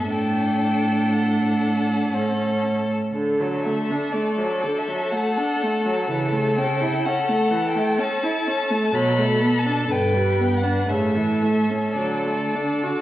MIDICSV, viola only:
0, 0, Header, 1, 2, 480
1, 0, Start_track
1, 0, Key_signature, 2, "major"
1, 0, Tempo, 1016949
1, 51, Time_signature, 3, 2, 24, 8
1, 1491, Tempo, 980392
1, 2451, Tempo, 953895
1, 4851, Tempo, 996678
1, 5331, Tempo, 1102941
1, 6258, End_track
2, 0, Start_track
2, 0, Title_t, "Viola"
2, 0, Program_c, 0, 41
2, 0, Note_on_c, 0, 59, 36
2, 51, Note_off_c, 0, 59, 0
2, 54, Note_on_c, 0, 62, 39
2, 1012, Note_on_c, 0, 61, 34
2, 1019, Note_off_c, 0, 62, 0
2, 1393, Note_off_c, 0, 61, 0
2, 1490, Note_on_c, 0, 50, 37
2, 1613, Note_on_c, 0, 54, 32
2, 1620, Note_off_c, 0, 50, 0
2, 1736, Note_on_c, 0, 57, 33
2, 1744, Note_off_c, 0, 54, 0
2, 1858, Note_on_c, 0, 62, 35
2, 1865, Note_off_c, 0, 57, 0
2, 1967, Note_on_c, 0, 57, 30
2, 1975, Note_off_c, 0, 62, 0
2, 2090, Note_on_c, 0, 54, 33
2, 2097, Note_off_c, 0, 57, 0
2, 2213, Note_on_c, 0, 50, 32
2, 2221, Note_off_c, 0, 54, 0
2, 2333, Note_on_c, 0, 54, 35
2, 2340, Note_off_c, 0, 50, 0
2, 2451, Note_on_c, 0, 57, 36
2, 2459, Note_off_c, 0, 54, 0
2, 2580, Note_on_c, 0, 62, 39
2, 2588, Note_off_c, 0, 57, 0
2, 2708, Note_on_c, 0, 57, 37
2, 2716, Note_off_c, 0, 62, 0
2, 2823, Note_on_c, 0, 54, 43
2, 2831, Note_off_c, 0, 57, 0
2, 2941, Note_off_c, 0, 54, 0
2, 2943, Note_on_c, 0, 52, 42
2, 3054, Note_on_c, 0, 57, 40
2, 3062, Note_off_c, 0, 52, 0
2, 3183, Note_on_c, 0, 61, 41
2, 3191, Note_off_c, 0, 57, 0
2, 3301, Note_on_c, 0, 64, 45
2, 3309, Note_off_c, 0, 61, 0
2, 3425, Note_on_c, 0, 61, 43
2, 3433, Note_off_c, 0, 64, 0
2, 3541, Note_on_c, 0, 57, 45
2, 3549, Note_off_c, 0, 61, 0
2, 3653, Note_on_c, 0, 52, 41
2, 3661, Note_off_c, 0, 57, 0
2, 3778, Note_on_c, 0, 57, 45
2, 3785, Note_off_c, 0, 52, 0
2, 3893, Note_on_c, 0, 61, 48
2, 3900, Note_off_c, 0, 57, 0
2, 4018, Note_on_c, 0, 64, 43
2, 4025, Note_off_c, 0, 61, 0
2, 4138, Note_on_c, 0, 61, 41
2, 4146, Note_off_c, 0, 64, 0
2, 4254, Note_on_c, 0, 57, 44
2, 4261, Note_off_c, 0, 61, 0
2, 4370, Note_off_c, 0, 57, 0
2, 4373, Note_on_c, 0, 54, 49
2, 4495, Note_on_c, 0, 57, 41
2, 4503, Note_off_c, 0, 54, 0
2, 4612, Note_on_c, 0, 59, 40
2, 4619, Note_off_c, 0, 57, 0
2, 4734, Note_on_c, 0, 62, 44
2, 4741, Note_off_c, 0, 59, 0
2, 4846, Note_off_c, 0, 62, 0
2, 4849, Note_on_c, 0, 50, 40
2, 4972, Note_on_c, 0, 55, 39
2, 4979, Note_off_c, 0, 50, 0
2, 5094, Note_on_c, 0, 59, 35
2, 5101, Note_off_c, 0, 55, 0
2, 5208, Note_on_c, 0, 62, 38
2, 5215, Note_off_c, 0, 59, 0
2, 5331, Note_off_c, 0, 62, 0
2, 5334, Note_on_c, 0, 49, 34
2, 5447, Note_on_c, 0, 52, 31
2, 5453, Note_off_c, 0, 49, 0
2, 5565, Note_on_c, 0, 57, 30
2, 5571, Note_off_c, 0, 52, 0
2, 5685, Note_on_c, 0, 61, 29
2, 5692, Note_off_c, 0, 57, 0
2, 5806, Note_off_c, 0, 61, 0
2, 5808, Note_on_c, 0, 54, 32
2, 5929, Note_on_c, 0, 57, 26
2, 5936, Note_off_c, 0, 54, 0
2, 6056, Note_on_c, 0, 62, 26
2, 6063, Note_off_c, 0, 57, 0
2, 6178, Note_on_c, 0, 66, 27
2, 6184, Note_off_c, 0, 62, 0
2, 6258, Note_off_c, 0, 66, 0
2, 6258, End_track
0, 0, End_of_file